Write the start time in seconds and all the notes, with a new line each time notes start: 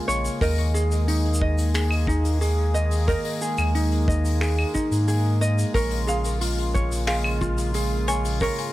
Already playing: C#3 G#3 A#3 F4 G#4
0.08 A#1 C#5, shaker
0.24 open hi-hat, shaker
0.41 D#2 D#3 G#4 A#4 D#5, kick, open hi-hat, shaker
0.58 open hi-hat
0.74 G#4, shaker
0.91 open hi-hat, shaker
1.08 D#4, open hi-hat, shaker
1.25 open hi-hat
1.34 shaker
1.41 D#5, kick
1.58 open hi-hat, shaker
1.74 G#4, finger snap, open hi-hat, shaker
1.91 open hi-hat, claves
2.07 D#4, kick, shaker
2.25 open hi-hat, shaker
2.41 G#4, open hi-hat, shaker
2.74 D#5, shaker
2.91 open hi-hat, shaker
2.96 open hi-hat
3.02 open hi-hat
3.08 A#4 D#5, kick, open hi-hat, shaker
3.25 open hi-hat
3.42 G#4, shaker
3.57 D#2, open hi-hat, claves, shaker
3.75 D#4, open hi-hat, shaker
3.92 open hi-hat
4.08 D#5, kick, shaker
4.25 open hi-hat, shaker
4.41 G#4, finger snap, open hi-hat, shaker
4.58 open hi-hat, claves
4.74 D#4, kick, shaker
4.91 G#2, open hi-hat, shaker
5.08 G#4, open hi-hat, shaker
5.41 D#5, shaker
5.58 open hi-hat, shaker
5.74 A#1 C#3 F4 A#4 C#5, kick, open hi-hat, shaker
5.91 open hi-hat
6.07 G#4 F5, shaker
6.24 open hi-hat, shaker
6.41 F4, open hi-hat, shaker
6.58 open hi-hat
6.74 C#5, kick, shaker
6.92 open hi-hat, shaker
7.07 G#4 F5, finger snap, open hi-hat, shaker
7.24 open hi-hat, claves
7.41 F4, kick, shaker
7.58 open hi-hat, shaker
7.74 G#4, open hi-hat, shaker
8.08 C#5 G#5, shaker
8.25 open hi-hat, shaker
8.41 A#4 C#5, kick, open hi-hat, shaker
8.58 open hi-hat